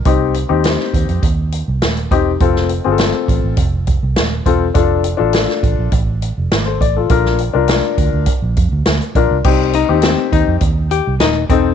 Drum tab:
CC |----------------|----------------|----------------|----------------|
HH |x-x-x-xxx-x-xxx-|x-x-x-x-x-x-x-x-|x-x-x-x-x-x-x-x-|x-x-x-x-x-x-xxx-|
SD |----oo------o---|-o--o-------o---|----oo------o---|-o--o-------o---|
BD |o-----o-o-----o-|o-----o-o-o---o-|o-----o-o-----o-|o-----o-o-o---o-|

CC |x---------------|
HH |--x-x-x-x-x-x-x-|
SD |----o-------o---|
BD |o-----o-o-----o-|